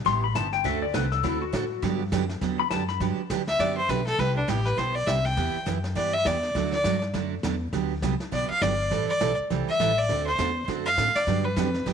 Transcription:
0.05 upright bass A1, steel-string acoustic guitar C3 G3 B3 E4 G4, electric slide guitar C6, brush sweep, kick, snare
0.24 electric slide guitar B5
0.35 upright bass G1, steel-string acoustic guitar C3 G3 B3 E4 G4, electric slide guitar A5, kick, snare, hi-hat pedal
0.53 electric slide guitar G5, snare
0.64 upright bass D2, steel-string acoustic guitar D3 A3 C4 F#4 A4, electric slide guitar E5, brush sweep, kick, snare
0.82 electric slide guitar D5
0.94 upright bass C2, steel-string acoustic guitar D3 A3 C4 F#4 A4, electric slide guitar B4, kick, snare, hi-hat pedal
1.12 electric slide guitar A4, snare
1.23 upright bass D2, steel-string acoustic guitar D3 A3 C4 F#4 A4, electric slide guitar E4, brush sweep, kick, snare
1.42 electric slide guitar F#4
1.52 upright bass A2, steel-string acoustic guitar D3 A3 C4 F#4 A4, kick, snare, hi-hat pedal
1.82 upright bass G2, steel-string acoustic guitar D3 F#3 B3 D4 G4, brush sweep, kick, snare
2.12 upright bass F#2, steel-string acoustic guitar D3 F#3 B3 D4 G4, kick, snare, hi-hat pedal
2.29 snare
2.41 upright bass E2, steel-string acoustic guitar D3 F#3 B3 D4 G4, brush sweep, kick, snare
2.60 electric slide guitar B5
2.70 upright bass F#2, steel-string acoustic guitar D3 F#3 B3 D4 G4, electric slide guitar A5, kick, snare, hi-hat pedal
2.88 electric slide guitar B5, snare
3.00 upright bass G2, steel-string acoustic guitar D3 F#3 B3 D4 G4, brush sweep, kick, snare
3.30 upright bass D2, steel-string acoustic guitar D3 F#3 B3 D4 G4, kick, snare, hi-hat pedal
3.48 fiddle E5, snare
3.59 upright bass F#2, steel-string acoustic guitar D3 F#3 B3 D4 G4, fiddle D5, brush sweep, kick, snare
3.77 fiddle C5
3.89 upright bass B1, steel-string acoustic guitar D3 F#3 B3 D4 G4, fiddle B4, kick, snare, hi-hat pedal
4.07 fiddle A4, snare
4.18 upright bass C2, steel-string acoustic guitar C3 G3 B3 E4 G4, fiddle B4, brush sweep, kick, snare
4.37 fiddle D4
4.48 upright bass A1, steel-string acoustic guitar C3 G3 B3 E4 G4, fiddle G4, kick, snare, hi-hat pedal
4.66 fiddle B4, snare
4.77 upright bass B1, steel-string acoustic guitar C3 G3 B3 E4 G4, fiddle C5, brush sweep, kick, snare
4.95 fiddle D5
5.07 upright bass C2, steel-string acoustic guitar C3 G3 B3 E4 G4, fiddle E5, kick, snare, hi-hat pedal
5.25 fiddle G5, snare
5.37 upright bass E2, steel-string acoustic guitar E3 B3 E4 G4, brush sweep, kick, snare
5.54 muted upright bass stroke
5.66 upright bass F#2, steel-string acoustic guitar E3 B3 E4 G4, kick, snare, hi-hat pedal
5.84 snare
5.95 upright bass G2, steel-string acoustic guitar E3 B3 E4 G4, fiddle D5, brush sweep, kick, snare
6.14 fiddle E5
6.25 upright bass E2, steel-string acoustic guitar E3 B3 E4 G4, fiddle D5, kick, snare, hi-hat pedal
6.43 snare
6.55 upright bass D2, steel-string acoustic guitar D3 F#3 A3 D4 F#4, brush sweep, kick, snare
6.72 fiddle D5, snare
6.84 upright bass G2, steel-string acoustic guitar D3 F#3 A3 D4 F#4, kick, snare, hi-hat pedal
7.02 snare
7.13 upright bass F#2, steel-string acoustic guitar D3 F#3 A3 D4 F#4, brush sweep, kick, snare
7.43 upright bass E2, steel-string acoustic guitar D3 F#3 A3 D4 F#4, kick, snare, hi-hat pedal
7.73 upright bass D2, steel-string acoustic guitar D3 F#3 B3 D4 G4, brush sweep, kick, snare
8.02 upright bass C2, steel-string acoustic guitar D3 F#3 B3 D4 G4, kick, snare, hi-hat pedal
8.20 muted upright bass stroke, snare
8.31 upright bass B1, steel-string acoustic guitar D3 F#3 B3 D4 G4, fiddle D5, brush sweep, kick, snare
8.50 fiddle F5, muted upright bass stroke
8.62 upright bass G1, steel-string acoustic guitar D3 F#3 B3 D4 G4, fiddle D5, kick, snare, hi-hat pedal
8.91 upright bass A1, steel-string acoustic guitar E3 G3 C4 E4 A4, brush sweep, kick, snare
9.09 fiddle D5, muted upright bass stroke
9.20 upright bass B1, steel-string acoustic guitar E3 G3 C4 E4 A4, kick, snare, hi-hat pedal
9.39 muted upright bass stroke
9.50 upright bass C2, steel-string acoustic guitar E3 G3 C4 E4 A4, brush sweep, kick, snare
9.69 fiddle E5
9.80 upright bass A1, steel-string acoustic guitar E3 G3 C4 E4 A4, kick, snare, hi-hat pedal
9.98 fiddle D5
10.09 upright bass D2, steel-string acoustic guitar D3 A3 C4 F#4 A4, brush sweep, kick, snare
10.27 fiddle C5
10.38 upright bass E2, steel-string acoustic guitar D3 A3 C4 F#4 A4, kick, snare, hi-hat pedal
10.68 upright bass F#2, steel-string acoustic guitar D3 A3 C4 F#4 A4, brush sweep, kick, snare
10.86 fiddle F5
10.97 upright bass A2, steel-string acoustic guitar D3 A3 C4 F#4 A4, kick, snare, hi-hat pedal
11.15 fiddle D5, muted upright bass stroke, snare
11.27 upright bass G2, steel-string acoustic guitar D3 F#3 B3 D4 G4, brush sweep, kick, snare
11.45 fiddle B4
11.56 upright bass F2, steel-string acoustic guitar D3 F#3 B3 D4 G4, kick, snare, hi-hat pedal
11.74 snare
11.86 upright bass F#2, steel-string acoustic guitar D3 F#3 B3 D4 G4, brush sweep, kick, snare

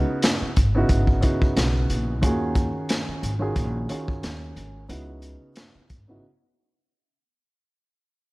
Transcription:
Already playing: grand piano C#3 B3 D#4 E4 F#4
0.22 snare, closed hi-hat
0.42 muted upright bass stroke
0.56 upright bass G#1, kick, closed hi-hat
0.75 grand piano C#3 B3 D#4 E4 F#4
0.89 upright bass G#1, kick, closed hi-hat
1.07 kick
1.21 grand piano C#3 B3 D#4 E4 F#4, kick, closed hi-hat
1.42 kick
1.56 upright bass B1, snare, closed hi-hat
1.90 upright bass A#1, closed hi-hat
2.21 upright bass D#2, grand piano D#3 C#4 F4 F#4 G#4, kick, closed hi-hat
2.55 kick, closed hi-hat
2.89 snare, closed hi-hat
3.08 muted upright bass stroke
3.23 upright bass G#1, closed hi-hat
3.39 grand piano D#3 C#4 F4 F#4 G#4
3.56 upright bass A#1, kick, closed hi-hat
3.89 grand piano D#3 C#4 F4 F#4 G#4, closed hi-hat
4.08 kick
4.23 upright bass D#2, snare, closed hi-hat
4.56 upright bass G#1, closed hi-hat
4.89 upright bass C#2, grand piano C#3 B3 D#4 E4 F#4, closed hi-hat
5.22 closed hi-hat
5.56 snare, closed hi-hat
5.75 muted upright bass stroke
5.90 upright bass G#1, kick, closed hi-hat
6.08 grand piano C#3 B3 D#4 E4 F#4

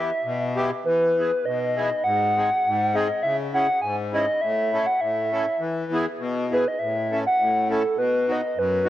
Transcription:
Already playing: accordion E3 B3 E4 G4, soft synth lead E5
0.24 accordion B2
0.56 accordion B3 E4 G4
0.85 accordion E3, soft synth lead B4
1.18 accordion B3 E4 G#4
1.45 accordion B2, soft synth lead D#5
1.76 accordion B3 E4 G#4
2.04 accordion G#2, soft synth lead F#5
2.36 accordion C4 D#4 G#4
2.66 accordion G#2
2.95 accordion C4 D#4 G#4, soft synth lead D#5
3.23 accordion C#3, soft synth lead E5
3.54 accordion C#4 E4 G#4, soft synth lead F#5
3.82 accordion G#2, soft synth lead G#5
4.13 accordion C#4 E4 G#4, soft synth lead D#5
4.41 accordion A2, soft synth lead E5
4.73 accordion C#4 E4 A4
4.86 soft synth lead F#5
5.01 accordion A2, soft synth lead E5
5.32 accordion C#4 E4 A4
5.60 accordion E3
5.92 accordion B3 E4 G#4
6.18 accordion B2
6.51 accordion B3 E4 G#4, soft synth lead B4
6.68 soft synth lead D#5
6.79 accordion A2, soft synth lead E5
7.11 accordion C#4 E4 A4, soft synth lead E5
7.26 soft synth lead F#5
7.39 accordion A2
7.70 accordion C#4 E4 A4, soft synth lead A4
7.96 accordion B2, soft synth lead B4
8.28 accordion B3 D#4 F#4, soft synth lead D#5
8.56 accordion F#2, soft synth lead B4
8.85 accordion B3 D#4 F#4

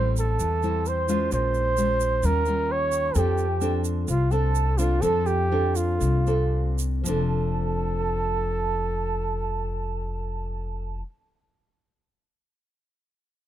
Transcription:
Already playing: upright bass A1, nylon-string guitar A2 G3 C4 E4, flugelhorn C5, flute section C6
0.17 flugelhorn A4, flute section A5, shaker
0.40 upright bass E2, nylon-string guitar E3, shaker
0.63 nylon-string guitar G3 C4 E4, shaker
0.86 flugelhorn C5, flute section C6, shaker
1.09 nylon-string guitar G#3 C#4 F4, shaker
1.31 upright bass A#1, nylon-string guitar A#2, flugelhorn C5, flute section C6, shaker
1.54 shaker
1.77 nylon-string guitar G#3 C#4 F4, shaker
2.00 shaker
2.23 upright bass D#2, nylon-string guitar D#3 G3 C#4 F4, flugelhorn A#4, flute section A#5, shaker
2.46 nylon-string guitar G3 C#4 F4, shaker
2.70 flugelhorn C#5, flute section C#6
2.92 shaker
3.15 upright bass F2, nylon-string guitar F3 C4 D4 A4, flugelhorn G4, flute section G5, shaker
3.38 shaker
3.61 nylon-string guitar C4 D4 A4, shaker
3.84 shaker
4.07 upright bass C2, nylon-string guitar C3, flugelhorn F4, flute section F5, shaker
4.30 nylon-string guitar C4 D4 A4, flugelhorn A4, flute section A5, shaker
4.55 shaker
4.77 nylon-string guitar C4 D4 A4, flugelhorn F4, flute section F5, shaker
4.99 upright bass F2, nylon-string guitar F3 C4 D4, flugelhorn A4, flute section A5, shaker
5.03 nylon-string guitar A4
5.25 flugelhorn G4, flute section G5, shaker
5.52 nylon-string guitar C4 D4 A4
5.74 flugelhorn F4, flute section F5, shaker
6.01 upright bass C2, nylon-string guitar C3, shaker
6.27 nylon-string guitar C4 D4 A4, shaker
6.79 shaker
7.04 upright bass F1, nylon-string guitar F3 C4, flugelhorn A4, flute section A5, shaker
7.08 nylon-string guitar D4 A4

